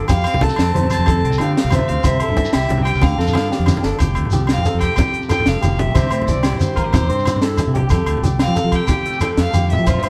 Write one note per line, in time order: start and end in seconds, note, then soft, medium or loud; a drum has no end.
0.08 1.07 F2 medium
0.08 0.25 F2 medium
0.08 0.40 G4 medium
0.08 0.44 F5 loud
0.08 kick medium
0.08 closed hi-hat medium
0.08 high conga loud
0.08 low agogo medium
0.08 shekere medium
0.24 0.59 C4 medium
0.24 closed hi-hat soft
0.24 low agogo medium
0.24 shekere soft
0.34 0.49 C2 medium
0.34 low conga medium
0.41 0.75 A3 medium
0.41 0.73 A4 medium
0.41 0.91 A5 loud
0.41 muted clean electric guitar stroke medium
0.41 kick medium
0.41 closed hi-hat soft
0.41 high conga loud
0.49 shekere medium
0.56 0.73 F2 medium
0.56 0.91 C4 medium
0.56 snare medium
0.56 closed hi-hat medium
0.56 low agogo medium
0.74 0.97 F2 medium
0.74 1.40 C3 medium
0.74 1.39 A3 medium
0.74 1.05 C5 medium
0.74 closed hi-hat soft
0.74 high conga medium
0.74 low conga soft
0.83 low conga medium
0.90 1.23 C4 medium
0.90 1.22 A5 medium
0.90 closed hi-hat medium
0.90 low conga soft
0.90 low agogo medium
0.90 shekere medium
0.98 1.21 F2 loud
1.06 1.38 A4 medium
1.06 muted clean electric guitar stroke medium
1.06 kick medium
1.06 closed hi-hat medium
1.06 high conga medium
1.06 low agogo medium
1.24 1.38 C2 medium
1.24 1.54 C4 medium
1.24 closed hi-hat soft
1.30 low conga medium
1.30 shekere medium
1.38 1.55 D3 medium
1.38 2.03 F3 medium
1.38 1.71 A3 medium
1.38 1.71 G4 medium
1.38 1.56 F5 medium
1.38 closed hi-hat medium
1.38 high conga medium
1.38 low agogo medium
1.55 1.87 C4 soft
1.55 1.76 F5 medium
1.55 snare medium
1.55 closed hi-hat medium
1.64 1.79 C2 medium
1.64 low conga soft
1.70 2.02 C3 medium
1.70 2.03 A3 medium
1.70 2.04 C5 medium
1.70 closed hi-hat medium
1.70 high conga loud
1.70 low conga soft
1.70 low agogo medium
1.70 shekere medium
1.74 1.89 E5 medium
1.79 low conga medium
1.88 1.97 D2 medium
1.88 2.20 C4 medium
1.88 2.08 F5 medium
1.88 closed hi-hat soft
2.03 2.20 C2 loud
2.03 2.37 C3 medium
2.03 2.21 C5 medium
2.03 2.54 E5 medium
2.03 kick medium
2.03 closed hi-hat medium
2.03 high conga medium
2.03 low agogo medium
2.03 shekere medium
2.20 2.51 E4 medium
2.20 2.52 A4 medium
2.20 closed hi-hat soft
2.20 low agogo medium
2.28 2.45 G2 medium
2.28 low conga medium
2.36 3.00 E3 medium
2.36 2.67 C4 soft
2.36 kick medium
2.36 closed hi-hat soft
2.36 high conga loud
2.36 shekere soft
2.45 shekere medium
2.53 2.69 C2 medium
2.53 2.85 E4 medium
2.53 2.84 G4 medium
2.53 2.84 E5 medium
2.53 snare medium
2.53 closed hi-hat medium
2.53 low conga soft
2.53 low agogo medium
2.53 shekere soft
2.62 shekere soft
2.68 2.92 C2 medium
2.68 3.00 G2 medium
2.68 3.00 C4 medium
2.68 closed hi-hat soft
2.68 high conga loud
2.77 low conga medium
2.85 3.01 E4 soft
2.85 3.17 G4 medium
2.85 3.05 G5 medium
2.85 closed hi-hat soft
2.85 low agogo medium
2.95 3.02 C2 medium
2.95 shekere soft
3.02 3.17 D2 loud
3.02 3.68 D3 medium
3.02 3.68 F5 medium
3.02 kick medium
3.02 snare soft
3.02 high conga medium
3.02 low agogo medium
3.02 shekere soft
3.18 3.33 F2 medium
3.18 3.29 C4 medium
3.18 3.50 A4 medium
3.18 snare soft
3.27 3.51 D4 soft
3.27 low conga medium
3.27 shekere medium
3.33 3.50 G2 medium
3.33 3.99 F3 medium
3.33 3.68 A#3 medium
3.33 snare medium
3.33 high conga loud
3.33 low agogo medium
3.51 3.84 D4 medium
3.51 3.82 G4 medium
3.51 snare medium
3.59 3.74 F2 medium
3.66 3.99 D3 medium
3.66 4.00 A#3 medium
3.66 snare medium
3.66 high conga medium
3.66 low agogo medium
3.66 shekere loud
3.77 low conga medium
3.83 3.92 G1 medium
3.83 3.99 D4 medium
3.83 3.99 A4 medium
3.83 snare medium
3.99 4.15 F1 medium
3.99 4.98 F2 medium
3.99 4.83 G4 medium
3.99 muted clean electric guitar stroke medium
3.99 kick medium
3.99 closed hi-hat medium
3.99 high conga medium
3.99 low agogo medium
3.99 shekere medium
4.09 low conga soft
4.15 4.24 D2 medium
4.15 5.14 A3 medium
4.15 closed hi-hat soft
4.15 low agogo medium
4.25 low conga medium
4.31 4.55 C2 medium
4.31 5.30 F3 soft
4.31 4.64 G4 medium
4.31 closed hi-hat soft
4.31 high conga medium
4.31 shekere medium
4.47 5.96 C4 soft
4.47 snare medium
4.47 closed hi-hat medium
4.47 low agogo medium
4.52 4.81 F5 loud
4.57 4.65 F2 medium
4.57 low conga medium
4.65 5.31 C3 medium
4.65 4.97 A4 medium
4.65 closed hi-hat soft
4.65 high conga medium
4.65 shekere medium
4.74 4.89 F2 medium
4.81 5.01 G4 medium
4.81 5.12 G5 medium
4.81 kick medium
4.81 snare soft
4.81 closed hi-hat soft
4.81 low agogo medium
4.81 shekere soft
4.96 muted clean electric guitar stroke medium
4.96 kick medium
4.96 closed hi-hat medium
4.96 high conga loud
4.96 low conga medium
4.96 low agogo medium
4.96 shekere medium
5.00 5.47 F2 medium
5.00 5.98 G4 medium
5.14 muted clean electric guitar stroke medium
5.14 closed hi-hat soft
5.22 low conga soft
5.22 shekere soft
5.29 5.94 F3 medium
5.29 5.61 A4 medium
5.29 5.49 G5 medium
5.29 closed hi-hat soft
5.29 high conga medium
5.29 low conga soft
5.29 low agogo medium
5.29 shekere medium
5.40 low conga medium
5.46 5.54 F1 medium
5.46 5.62 G2 medium
5.46 5.81 F5 medium
5.46 snare medium
5.46 closed hi-hat medium
5.56 low conga soft
5.61 5.86 F1 medium
5.61 5.79 A2 medium
5.61 5.94 G4 medium
5.61 closed hi-hat soft
5.61 high conga loud
5.61 low conga soft
5.61 low agogo medium
5.61 shekere medium
5.77 5.95 A#2 medium
5.77 6.12 E5 medium
5.77 closed hi-hat soft
5.77 low conga medium
5.87 5.95 B1 medium
5.94 6.05 C2 medium
5.94 6.28 C3 medium
5.94 6.24 E3 medium
5.94 6.11 C4 medium
5.94 6.42 E4 medium
5.94 6.10 C5 medium
5.94 kick medium
5.94 closed hi-hat medium
5.94 high conga medium
5.94 low agogo medium
5.94 shekere medium
5.99 6.75 G4 medium
6.03 6.11 A2 medium
6.03 low conga soft
6.11 6.26 A2 medium
6.11 7.10 C4 medium
6.11 6.43 C5 medium
6.11 closed hi-hat soft
6.11 low agogo medium
6.22 7.25 E3 medium
6.22 low conga medium
6.28 6.36 A1 medium
6.28 6.58 D5 medium
6.28 kick medium
6.28 closed hi-hat soft
6.28 high conga medium
6.28 shekere medium
6.36 6.51 C2 medium
6.43 7.42 E4 medium
6.43 6.75 G4 medium
6.43 snare medium
6.43 closed hi-hat medium
6.43 low agogo medium
6.52 low conga medium
6.59 6.93 G2 medium
6.59 6.91 C5 medium
6.59 closed hi-hat soft
6.59 high conga loud
6.59 shekere medium
6.76 6.92 A1 medium
6.76 6.84 F4 medium
6.76 7.08 A#4 medium
6.76 kick medium
6.76 closed hi-hat soft
6.76 low agogo medium
6.76 shekere soft
6.84 6.93 G4 soft
6.92 7.26 C3 medium
6.92 7.75 G4 medium
6.92 7.39 C5 medium
6.92 kick medium
6.92 closed hi-hat medium
6.92 high conga medium
6.92 low conga loud
6.92 low agogo medium
6.92 shekere medium
7.01 7.08 E2 medium
7.08 7.61 G2 medium
7.08 8.08 C4 medium
7.08 7.40 C5 medium
7.08 closed hi-hat soft
7.19 low conga soft
7.19 shekere soft
7.25 7.90 E3 medium
7.25 closed hi-hat soft
7.25 high conga loud
7.25 low conga soft
7.25 low agogo medium
7.25 shekere medium
7.36 low conga medium
7.42 7.90 E4 soft
7.42 7.74 A4 medium
7.42 snare medium
7.42 closed hi-hat medium
7.51 low conga soft
7.57 7.90 G2 medium
7.57 closed hi-hat soft
7.57 high conga loud
7.57 low conga soft
7.57 low agogo medium
7.57 shekere medium
7.67 7.82 C3 medium
7.74 7.90 G4 medium
7.74 7.91 G4 medium
7.74 closed hi-hat soft
7.74 low conga medium
7.83 7.90 C2 medium
7.89 8.06 F2 medium
7.89 8.89 F2 medium
7.89 8.72 G4 medium
7.89 8.22 A4 medium
7.89 kick medium
7.89 closed hi-hat medium
7.89 high conga medium
7.89 low agogo medium
7.89 shekere medium
8.00 low conga soft
8.06 8.15 D2 medium
8.06 9.05 A3 medium
8.06 closed hi-hat soft
8.06 low agogo medium
8.17 low conga medium
8.22 8.45 C2 medium
8.22 8.55 G4 medium
8.22 closed hi-hat soft
8.22 high conga medium
8.22 shekere medium
8.39 10.05 C4 medium
8.39 8.77 F5 loud
8.39 snare medium
8.39 closed hi-hat medium
8.39 low agogo medium
8.47 8.56 F3 medium
8.47 low conga medium
8.55 9.23 C3 medium
8.55 8.88 A4 medium
8.55 closed hi-hat soft
8.55 high conga medium
8.55 shekere medium
8.64 8.80 F3 medium
8.72 8.89 G4 medium
8.72 9.07 G5 medium
8.72 kick medium
8.72 closed hi-hat soft
8.72 low agogo medium
8.72 shekere soft
8.87 9.38 F2 medium
8.87 9.20 G4 medium
8.87 9.87 G4 medium
8.87 kick medium
8.87 closed hi-hat medium
8.87 high conga medium
8.87 low conga medium
8.87 low agogo medium
8.87 shekere medium
9.06 9.86 A3 medium
9.06 closed hi-hat soft
9.13 low conga soft
9.13 shekere soft
9.20 10.09 F3 medium
9.20 9.53 A4 medium
9.20 9.31 G5 medium
9.20 closed hi-hat soft
9.20 high conga medium
9.20 low conga soft
9.20 low agogo medium
9.20 shekere medium
9.37 9.46 F2 medium
9.37 9.55 F2 soft
9.37 9.69 F5 medium
9.37 snare medium
9.37 closed hi-hat medium
9.47 low conga soft
9.54 9.77 F2 medium
9.54 9.72 G2 medium
9.54 9.86 G4 medium
9.54 closed hi-hat soft
9.54 high conga medium
9.54 low conga soft
9.54 low agogo soft
9.54 shekere medium
9.70 9.89 A2 medium
9.70 10.02 E5 medium
9.70 closed hi-hat medium
9.70 low conga medium
9.79 9.86 F3 medium
9.87 9.96 A#1 medium
9.87 10.09 A#2 medium
9.87 10.09 F4 medium
9.87 10.02 C5 medium
9.87 kick medium
9.87 closed hi-hat medium
9.87 high conga medium
9.87 low conga soft
9.87 low agogo medium
9.87 shekere medium
9.94 10.01 G2 medium
9.94 low conga soft
10.02 10.09 G2 medium
10.02 10.09 C4 medium
10.02 10.09 C5 medium
10.02 closed hi-hat soft
10.02 low conga soft
10.02 low agogo medium
10.02 shekere soft